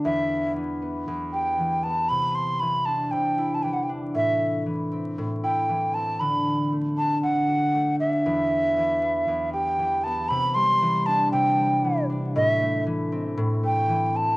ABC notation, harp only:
X:1
M:4/4
L:1/8
Q:"Swing 16ths" 1/4=117
K:Clyd
V:1 name="Harp" clef=bass
E,,2 E, B, E,, G E, B, | C,2 E, D C, E E, D | A,,2 E, C A,, E E, C | D,2 A, D D, F A, D |
E,,2 E, B, E,, G E, B, | C, G, E, D C, G, E, D | A,, A, E, C A,, A, E, C |]